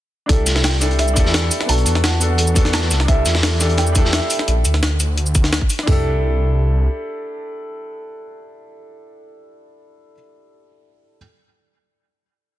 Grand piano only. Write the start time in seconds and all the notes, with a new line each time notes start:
0.26 D4 E4 G4
0.32 A4
0.80 D4 E4 G4 A4
1.13 D4 E4 G4
1.19 A4
1.66 B3 D4 F#4
1.72 A4
2.20 B3 D4 F#4 A4
2.54 B3 D4 F#4 A4
3.05 D4 E4 G4
3.11 A4
3.59 D4 E4 G4 A4
3.92 D4 E4 G4
3.98 A4
5.83 D4 E4
5.89 G4 A4